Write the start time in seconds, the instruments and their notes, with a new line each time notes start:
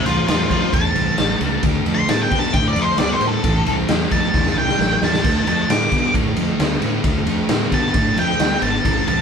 0.05 fingered electric bass C2, distorted electric guitar A2 E3, lead electric guitar C5 A5, ride
0.28 fingered electric bass E2, distorted electric guitar A2 F#3, lead electric guitar C5 A5, snare, ride
0.50 fingered electric bass F2, distorted electric guitar A2 F#3, lead electric guitar C5 A5, kick, ride
0.72 fingered electric bass E2, distorted electric guitar A2 E3, lead electric guitar A5, kick, ride
0.95 fingered electric bass C2, distorted electric guitar A2 E3, ride
1.18 fingered electric bass A1, distorted electric guitar A2 F#3, snare, ride
1.41 fingered electric bass C#2, distorted electric guitar A2 F#3, ride
1.63 fingered electric bass D2, distorted electric guitar D3 A3, kick, ride
1.86 fingered electric bass F2, distorted electric guitar D3 A3, ride
1.95 lead electric guitar C6
2.08 fingered electric bass A2, distorted electric guitar D3 B3, lead electric guitar A5, snare, ride
2.23 lead electric guitar G5
2.31 fingered electric bass B2, distorted electric guitar D3 B3, kick, ride
2.39 lead electric guitar A5
2.53 fingered electric bass A2, distorted electric guitar D3 A3, lead electric guitar G5, kick, ride
2.68 lead electric guitar D5
2.76 fingered electric bass F2, distorted electric guitar D3 A3, ride
2.82 lead electric guitar C5
2.98 fingered electric bass D2, distorted electric guitar D3 B3, lead electric guitar D5, snare, ride
3.13 lead electric guitar C5
3.21 fingered electric bass A2, distorted electric guitar D3 B3, ride
3.28 lead electric guitar A4
3.44 fingered electric bass A1, distorted electric guitar A2 E3, kick, ride
3.66 fingered electric bass C2, distorted electric guitar A2 E3, ride
3.88 fingered electric bass E2, distorted electric guitar A2 F#3, snare, ride
4.11 fingered electric bass F2, distorted electric guitar A2 F#3, lead electric guitar A5, kick, ride
4.34 fingered electric bass E2, distorted electric guitar A2 E3, kick, snare
4.46 snare
4.56 fingered electric bass C2, distorted electric guitar A2 E3, lead electric guitar G5
4.68 snare
4.79 fingered electric bass A1, distorted electric guitar A2 F#3, snare
5.02 fingered electric bass E2, distorted electric guitar A2 F#3, lead electric guitar A5, snare
5.13 snare
5.24 fingered electric bass D2, distorted electric guitar D3 A3, kick, ride, crash
5.46 fingered electric bass F2, distorted electric guitar D3 A3, lead electric guitar A5, ride
5.69 fingered electric bass A2, distorted electric guitar D3 B3, lead electric guitar D6, snare, ride
5.92 fingered electric bass B2, distorted electric guitar D3 B3, kick, ride
6.14 fingered electric bass A2, distorted electric guitar D3 A3, kick, ride
6.36 fingered electric bass F2, distorted electric guitar D3 A3, ride
6.59 fingered electric bass D2, distorted electric guitar D3 B3, snare, ride
6.81 fingered electric bass A2, distorted electric guitar D3 B3, ride
7.04 fingered electric bass D2, distorted electric guitar D3 A3, kick, ride
7.25 fingered electric bass F2, distorted electric guitar D3 A3, ride
7.49 fingered electric bass A2, distorted electric guitar D3 B3, snare, ride
7.72 fingered electric bass B2, distorted electric guitar D3 B3, lead electric guitar A5, kick, ride
7.94 fingered electric bass A2, distorted electric guitar D3 A3, kick, ride
8.16 fingered electric bass F2, distorted electric guitar D3 A3, lead electric guitar G5, ride
8.40 fingered electric bass D2, distorted electric guitar D3 B3, snare, ride
8.62 fingered electric bass G#1, distorted electric guitar D3 B3, lead electric guitar A5, ride
8.85 fingered electric bass A1, distorted electric guitar A2 E3, kick, ride
9.07 fingered electric bass C2, distorted electric guitar A2 E3, lead electric guitar A5, ride